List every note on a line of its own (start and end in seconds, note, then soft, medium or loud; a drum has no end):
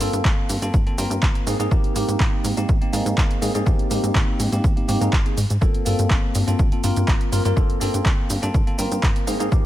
0.00 0.08 G2 medium
0.00 0.59 A#3 medium
0.00 0.59 C4 medium
0.00 0.59 F4 medium
0.00 0.60 A4 loud
0.00 open hi-hat loud
0.00 shaker medium
0.13 0.20 G2 medium
0.13 closed hi-hat medium
0.13 shaker soft
0.25 0.33 G1 medium
0.25 kick loud
0.25 clap loud
0.25 shaker soft
0.49 0.57 G2 loud
0.49 open hi-hat loud
0.49 shaker medium
0.62 0.69 G2 medium
0.62 0.82 A#3 medium
0.62 0.82 C4 medium
0.62 0.82 F4 medium
0.62 0.82 A4 medium
0.62 closed hi-hat medium
0.62 shaker soft
0.74 0.86 G1 loud
0.74 kick loud
0.74 shaker soft
0.86 0.96 G2 soft
0.86 0.96 A#3 medium
0.86 0.96 C4 medium
0.86 0.96 F4 medium
0.86 0.96 A4 medium
0.86 closed hi-hat soft
0.98 1.06 G2 medium
0.98 1.44 A#3 medium
0.98 1.44 C4 medium
0.98 1.44 F4 medium
0.98 1.44 A#4 loud
0.98 open hi-hat loud
0.98 shaker medium
1.10 1.18 G2 medium
1.10 closed hi-hat medium
1.10 shaker soft
1.22 1.30 G1 medium
1.22 kick loud
1.22 clap loud
1.22 shaker soft
1.35 closed hi-hat medium
1.47 1.55 G#2 medium
1.47 1.56 A#3 loud
1.47 1.57 C4 medium
1.47 1.57 D#4 medium
1.47 1.57 G#4 loud
1.47 open hi-hat loud
1.47 shaker medium
1.60 1.67 G#2 medium
1.60 1.68 A#3 medium
1.60 1.69 C4 medium
1.60 1.69 D#4 medium
1.60 1.69 G#4 medium
1.60 closed hi-hat medium
1.60 shaker soft
1.71 1.79 G#1 loud
1.71 1.93 A#3 medium
1.71 1.93 C4 medium
1.71 1.93 D#4 medium
1.71 1.93 G4 loud
1.71 kick loud
1.71 shaker soft
1.84 closed hi-hat soft
1.95 2.04 G#2 medium
1.95 2.54 A#3 medium
1.95 2.54 C4 medium
1.95 2.54 D#4 medium
1.95 2.55 G4 loud
1.95 open hi-hat loud
1.95 shaker medium
2.08 2.16 G#2 medium
2.08 closed hi-hat medium
2.08 shaker soft
2.20 2.28 G#1 loud
2.20 kick loud
2.20 clap loud
2.20 shaker soft
2.44 2.52 G#2 loud
2.44 open hi-hat loud
2.44 shaker medium
2.57 2.64 G#2 medium
2.57 2.77 A#3 medium
2.57 2.77 C4 medium
2.57 2.77 D#4 medium
2.57 2.77 G4 medium
2.57 closed hi-hat medium
2.57 shaker soft
2.69 2.81 G#1 loud
2.69 kick loud
2.69 shaker soft
2.81 2.91 G#2 soft
2.81 2.91 A#3 medium
2.81 2.91 C4 medium
2.81 2.91 D#4 medium
2.81 2.91 G4 medium
2.81 closed hi-hat soft
2.93 3.01 G#2 loud
2.93 3.39 A#3 loud
2.93 3.39 C4 medium
2.93 3.39 D#4 medium
2.93 3.39 G#4 loud
2.93 open hi-hat loud
2.93 shaker medium
3.06 3.13 G#2 medium
3.06 closed hi-hat medium
3.06 shaker soft
3.18 3.25 G#1 medium
3.18 kick loud
3.18 clap loud
3.18 shaker soft
3.31 closed hi-hat medium
3.41 3.50 G#2 medium
3.41 3.51 A#3 medium
3.41 3.52 C4 medium
3.41 3.52 D#4 medium
3.41 3.52 G#4 loud
3.41 open hi-hat loud
3.41 shaker medium
3.54 3.62 G#2 medium
3.54 3.63 A#3 medium
3.54 3.64 C4 medium
3.54 3.64 D#4 medium
3.54 3.64 G#4 medium
3.54 closed hi-hat medium
3.54 shaker soft
3.66 3.74 G#1 loud
3.66 3.88 A#3 loud
3.66 3.88 C4 medium
3.66 3.88 D#4 medium
3.66 3.88 G4 loud
3.66 kick loud
3.66 shaker soft
3.79 3.88 G#2 soft
3.79 closed hi-hat soft
3.90 3.99 G#2 medium
3.90 4.49 A#3 medium
3.90 4.49 C4 medium
3.90 4.49 D#4 medium
3.90 4.50 G4 medium
3.90 open hi-hat loud
3.90 shaker medium
4.03 4.11 G#2 medium
4.03 closed hi-hat medium
4.03 shaker soft
4.15 4.23 G#1 loud
4.15 kick loud
4.15 clap loud
4.15 shaker soft
4.40 4.47 G#2 medium
4.40 open hi-hat loud
4.40 shaker medium
4.52 4.59 G#2 medium
4.52 4.72 A#3 medium
4.52 4.72 C4 medium
4.52 4.72 D#4 medium
4.52 4.73 G4 medium
4.52 closed hi-hat medium
4.52 shaker soft
4.64 4.77 G#1 loud
4.64 kick loud
4.64 shaker soft
4.76 4.86 G#2 soft
4.76 4.86 A#3 medium
4.76 4.86 C4 medium
4.76 4.86 D#4 medium
4.76 4.86 G4 medium
4.76 closed hi-hat soft
4.88 4.96 G#2 loud
4.88 4.99 A#3 medium
4.88 4.99 C4 medium
4.88 4.99 D#4 medium
4.88 4.99 G4 loud
4.88 open hi-hat loud
4.88 shaker medium
5.01 5.08 G#2 medium
5.01 5.13 A#3 medium
5.01 5.13 C4 medium
5.01 5.13 D#4 medium
5.01 5.13 G#4 loud
5.01 closed hi-hat medium
5.01 shaker soft
5.13 5.21 G#1 medium
5.13 kick loud
5.13 clap loud
5.13 shaker soft
5.25 5.37 A#3 medium
5.25 5.38 C4 medium
5.25 5.38 D#4 medium
5.25 5.38 G#4 medium
5.25 closed hi-hat medium
5.37 5.45 G#2 medium
5.37 open hi-hat loud
5.37 shaker medium
5.50 5.57 G#2 medium
5.50 closed hi-hat medium
5.50 shaker soft
5.61 5.69 G1 loud
5.61 5.83 A#3 loud
5.61 5.83 C4 medium
5.61 5.83 F4 medium
5.61 5.83 A4 loud
5.61 kick loud
5.61 shaker soft
5.74 closed hi-hat soft
5.85 5.94 G2 medium
5.85 6.44 A#3 medium
5.85 6.44 C4 medium
5.85 6.45 F4 medium
5.85 6.45 A4 loud
5.85 open hi-hat loud
5.85 shaker medium
5.99 6.06 G2 medium
5.99 closed hi-hat medium
5.99 shaker soft
6.10 6.18 G1 medium
6.10 kick loud
6.10 clap loud
6.10 shaker soft
6.35 6.43 G2 loud
6.35 open hi-hat loud
6.35 shaker medium
6.47 6.55 G2 medium
6.47 6.67 A#3 medium
6.47 6.67 C4 medium
6.47 6.67 F4 medium
6.47 6.68 A4 medium
6.47 closed hi-hat medium
6.47 shaker soft
6.59 6.72 G1 loud
6.59 kick loud
6.59 shaker soft
6.72 6.81 G2 soft
6.72 6.81 A#3 medium
6.72 6.81 C4 medium
6.72 6.81 F4 medium
6.72 6.82 A4 medium
6.72 closed hi-hat soft
6.83 6.91 G2 loud
6.83 7.29 A#3 medium
6.83 7.30 C4 medium
6.83 7.30 F4 medium
6.83 7.30 A#4 loud
6.83 open hi-hat loud
6.83 shaker medium
6.96 7.04 G2 loud
6.96 closed hi-hat medium
6.96 shaker soft
7.08 7.16 G1 medium
7.08 kick loud
7.08 clap loud
7.08 shaker soft
7.21 closed hi-hat medium
7.32 7.40 G2 medium
7.32 7.42 A#3 medium
7.32 7.42 C4 medium
7.32 7.42 F4 medium
7.32 7.42 A#4 loud
7.32 open hi-hat loud
7.32 shaker medium
7.45 7.52 G2 medium
7.45 7.54 A#3 medium
7.45 7.54 C4 medium
7.45 7.54 F4 medium
7.45 7.54 A#4 medium
7.45 closed hi-hat medium
7.45 shaker soft
7.56 7.65 G1 loud
7.56 7.78 A#3 medium
7.56 7.78 C4 medium
7.56 7.78 F4 medium
7.56 7.79 A4 loud
7.56 kick loud
7.56 shaker soft
7.70 7.79 G2 soft
7.70 closed hi-hat medium
7.80 7.89 G2 medium
7.80 8.39 A#3 medium
7.80 8.39 C4 medium
7.80 8.40 F4 medium
7.80 8.40 A4 medium
7.80 open hi-hat loud
7.80 shaker medium
7.94 8.01 G2 medium
7.94 closed hi-hat medium
7.94 shaker soft
8.05 8.13 G1 medium
8.05 kick loud
8.05 clap loud
8.05 shaker soft
8.30 8.38 G2 medium
8.30 open hi-hat loud
8.30 shaker medium
8.42 8.50 G2 medium
8.42 8.62 A#3 medium
8.42 8.62 C4 medium
8.42 8.63 F4 medium
8.42 8.63 A4 medium
8.42 closed hi-hat medium
8.42 shaker soft
8.54 8.67 G1 loud
8.54 kick loud
8.54 shaker soft
8.67 8.76 G2 soft
8.67 8.76 A#3 medium
8.67 8.76 C4 medium
8.67 8.76 F4 medium
8.67 8.77 A4 medium
8.67 closed hi-hat soft
8.78 8.87 G2 loud
8.78 9.24 A#3 medium
8.78 9.25 C4 medium
8.78 9.25 F4 medium
8.78 9.25 A#4 loud
8.78 open hi-hat loud
8.78 shaker medium
8.92 8.99 G2 medium
8.92 closed hi-hat medium
8.92 shaker soft
9.03 9.11 G1 medium
9.03 kick loud
9.03 clap loud
9.03 shaker soft
9.16 closed hi-hat medium
9.27 9.35 G#2 medium
9.27 9.37 A#3 loud
9.27 9.37 C4 medium
9.27 9.37 D#4 medium
9.27 9.37 G#4 loud
9.27 open hi-hat loud
9.27 shaker medium
9.40 9.47 G#2 medium
9.40 9.49 A#3 medium
9.40 9.49 C4 medium
9.40 9.49 D#4 medium
9.40 9.49 G#4 medium
9.40 closed hi-hat medium
9.40 shaker soft
9.51 9.60 G#1 loud
9.51 9.66 A#3 medium
9.51 9.66 C4 medium
9.51 9.66 D#4 medium
9.51 9.66 G4 loud
9.51 kick loud
9.51 shaker soft